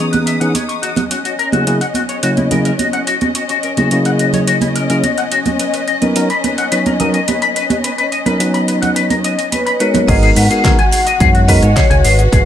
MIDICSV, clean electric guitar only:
0, 0, Header, 1, 2, 480
1, 0, Start_track
1, 0, Key_signature, 5, "minor"
1, 0, Tempo, 560748
1, 951, Time_signature, 4, 2, 24, 8
1, 10657, End_track
2, 0, Start_track
2, 0, Title_t, "Clean electric guitar"
2, 0, Program_c, 0, 27
2, 107, Note_on_c, 0, 71, 62
2, 145, Note_off_c, 0, 71, 0
2, 224, Note_on_c, 0, 76, 85
2, 288, Note_off_c, 0, 76, 0
2, 345, Note_on_c, 0, 78, 90
2, 408, Note_off_c, 0, 78, 0
2, 467, Note_on_c, 0, 73, 67
2, 530, Note_off_c, 0, 73, 0
2, 587, Note_on_c, 0, 85, 85
2, 625, Note_off_c, 0, 85, 0
2, 704, Note_on_c, 0, 66, 90
2, 768, Note_off_c, 0, 66, 0
2, 828, Note_on_c, 0, 66, 63
2, 866, Note_off_c, 0, 66, 0
2, 948, Note_on_c, 0, 66, 76
2, 1010, Note_off_c, 0, 66, 0
2, 1071, Note_on_c, 0, 66, 83
2, 1131, Note_off_c, 0, 66, 0
2, 1187, Note_on_c, 0, 70, 89
2, 1250, Note_off_c, 0, 70, 0
2, 1310, Note_on_c, 0, 66, 84
2, 1400, Note_off_c, 0, 66, 0
2, 1428, Note_on_c, 0, 66, 68
2, 1490, Note_off_c, 0, 66, 0
2, 1549, Note_on_c, 0, 78, 90
2, 1586, Note_off_c, 0, 78, 0
2, 1670, Note_on_c, 0, 66, 67
2, 1731, Note_off_c, 0, 66, 0
2, 1789, Note_on_c, 0, 73, 87
2, 1850, Note_off_c, 0, 73, 0
2, 1911, Note_on_c, 0, 66, 93
2, 1971, Note_off_c, 0, 66, 0
2, 2032, Note_on_c, 0, 64, 65
2, 2067, Note_off_c, 0, 64, 0
2, 2150, Note_on_c, 0, 70, 89
2, 2211, Note_off_c, 0, 70, 0
2, 2270, Note_on_c, 0, 70, 93
2, 2330, Note_off_c, 0, 70, 0
2, 2390, Note_on_c, 0, 66, 69
2, 2451, Note_off_c, 0, 66, 0
2, 2509, Note_on_c, 0, 78, 86
2, 2546, Note_off_c, 0, 78, 0
2, 2629, Note_on_c, 0, 66, 92
2, 2691, Note_off_c, 0, 66, 0
2, 2754, Note_on_c, 0, 66, 66
2, 2789, Note_off_c, 0, 66, 0
2, 2871, Note_on_c, 0, 66, 74
2, 2931, Note_off_c, 0, 66, 0
2, 2993, Note_on_c, 0, 66, 91
2, 3052, Note_off_c, 0, 66, 0
2, 3113, Note_on_c, 0, 70, 98
2, 3172, Note_off_c, 0, 70, 0
2, 3232, Note_on_c, 0, 66, 85
2, 3321, Note_off_c, 0, 66, 0
2, 3352, Note_on_c, 0, 66, 73
2, 3412, Note_off_c, 0, 66, 0
2, 3473, Note_on_c, 0, 78, 84
2, 3508, Note_off_c, 0, 78, 0
2, 3592, Note_on_c, 0, 66, 67
2, 3652, Note_off_c, 0, 66, 0
2, 3712, Note_on_c, 0, 73, 89
2, 3772, Note_off_c, 0, 73, 0
2, 3830, Note_on_c, 0, 66, 97
2, 3891, Note_off_c, 0, 66, 0
2, 3951, Note_on_c, 0, 64, 68
2, 3988, Note_off_c, 0, 64, 0
2, 4071, Note_on_c, 0, 70, 92
2, 4131, Note_off_c, 0, 70, 0
2, 4193, Note_on_c, 0, 70, 94
2, 4252, Note_off_c, 0, 70, 0
2, 4310, Note_on_c, 0, 66, 72
2, 4371, Note_off_c, 0, 66, 0
2, 4433, Note_on_c, 0, 78, 89
2, 4468, Note_off_c, 0, 78, 0
2, 4552, Note_on_c, 0, 66, 93
2, 4612, Note_off_c, 0, 66, 0
2, 4672, Note_on_c, 0, 66, 66
2, 4708, Note_off_c, 0, 66, 0
2, 4792, Note_on_c, 0, 71, 79
2, 4852, Note_off_c, 0, 71, 0
2, 4910, Note_on_c, 0, 71, 92
2, 4971, Note_off_c, 0, 71, 0
2, 5030, Note_on_c, 0, 75, 93
2, 5091, Note_off_c, 0, 75, 0
2, 5151, Note_on_c, 0, 71, 85
2, 5241, Note_off_c, 0, 71, 0
2, 5271, Note_on_c, 0, 71, 75
2, 5331, Note_off_c, 0, 71, 0
2, 5393, Note_on_c, 0, 83, 88
2, 5428, Note_off_c, 0, 83, 0
2, 5513, Note_on_c, 0, 71, 71
2, 5573, Note_off_c, 0, 71, 0
2, 5633, Note_on_c, 0, 78, 96
2, 5692, Note_off_c, 0, 78, 0
2, 5749, Note_on_c, 0, 71, 95
2, 5811, Note_off_c, 0, 71, 0
2, 5871, Note_on_c, 0, 70, 66
2, 5907, Note_off_c, 0, 70, 0
2, 5990, Note_on_c, 0, 75, 96
2, 6051, Note_off_c, 0, 75, 0
2, 6112, Note_on_c, 0, 75, 92
2, 6171, Note_off_c, 0, 75, 0
2, 6231, Note_on_c, 0, 71, 72
2, 6292, Note_off_c, 0, 71, 0
2, 6352, Note_on_c, 0, 83, 95
2, 6388, Note_off_c, 0, 83, 0
2, 6471, Note_on_c, 0, 71, 92
2, 6531, Note_off_c, 0, 71, 0
2, 6589, Note_on_c, 0, 71, 63
2, 6626, Note_off_c, 0, 71, 0
2, 6710, Note_on_c, 0, 71, 78
2, 6771, Note_off_c, 0, 71, 0
2, 6831, Note_on_c, 0, 71, 91
2, 6891, Note_off_c, 0, 71, 0
2, 6950, Note_on_c, 0, 75, 91
2, 7011, Note_off_c, 0, 75, 0
2, 7070, Note_on_c, 0, 71, 89
2, 7160, Note_off_c, 0, 71, 0
2, 7191, Note_on_c, 0, 71, 71
2, 7251, Note_off_c, 0, 71, 0
2, 7310, Note_on_c, 0, 83, 94
2, 7347, Note_off_c, 0, 83, 0
2, 7430, Note_on_c, 0, 71, 67
2, 7491, Note_off_c, 0, 71, 0
2, 7549, Note_on_c, 0, 78, 92
2, 7610, Note_off_c, 0, 78, 0
2, 7669, Note_on_c, 0, 71, 94
2, 7730, Note_off_c, 0, 71, 0
2, 7792, Note_on_c, 0, 70, 66
2, 7828, Note_off_c, 0, 70, 0
2, 7913, Note_on_c, 0, 75, 92
2, 7972, Note_off_c, 0, 75, 0
2, 8031, Note_on_c, 0, 75, 94
2, 8091, Note_off_c, 0, 75, 0
2, 8150, Note_on_c, 0, 71, 73
2, 8211, Note_off_c, 0, 71, 0
2, 8271, Note_on_c, 0, 83, 94
2, 8307, Note_off_c, 0, 83, 0
2, 8391, Note_on_c, 0, 71, 96
2, 8451, Note_off_c, 0, 71, 0
2, 8512, Note_on_c, 0, 71, 69
2, 8548, Note_off_c, 0, 71, 0
2, 8630, Note_on_c, 0, 68, 87
2, 8691, Note_off_c, 0, 68, 0
2, 8752, Note_on_c, 0, 68, 102
2, 8811, Note_off_c, 0, 68, 0
2, 8873, Note_on_c, 0, 71, 102
2, 8933, Note_off_c, 0, 71, 0
2, 8992, Note_on_c, 0, 68, 100
2, 9082, Note_off_c, 0, 68, 0
2, 9111, Note_on_c, 0, 68, 79
2, 9171, Note_off_c, 0, 68, 0
2, 9233, Note_on_c, 0, 80, 95
2, 9268, Note_off_c, 0, 80, 0
2, 9352, Note_on_c, 0, 68, 74
2, 9412, Note_off_c, 0, 68, 0
2, 9473, Note_on_c, 0, 75, 101
2, 9532, Note_off_c, 0, 75, 0
2, 9593, Note_on_c, 0, 68, 109
2, 9652, Note_off_c, 0, 68, 0
2, 9714, Note_on_c, 0, 66, 73
2, 9749, Note_off_c, 0, 66, 0
2, 9830, Note_on_c, 0, 71, 103
2, 9891, Note_off_c, 0, 71, 0
2, 9952, Note_on_c, 0, 73, 99
2, 10011, Note_off_c, 0, 73, 0
2, 10070, Note_on_c, 0, 68, 78
2, 10131, Note_off_c, 0, 68, 0
2, 10188, Note_on_c, 0, 80, 101
2, 10226, Note_off_c, 0, 80, 0
2, 10309, Note_on_c, 0, 68, 100
2, 10370, Note_off_c, 0, 68, 0
2, 10431, Note_on_c, 0, 68, 74
2, 10467, Note_off_c, 0, 68, 0
2, 10549, Note_on_c, 0, 68, 83
2, 10610, Note_off_c, 0, 68, 0
2, 10657, End_track
0, 0, End_of_file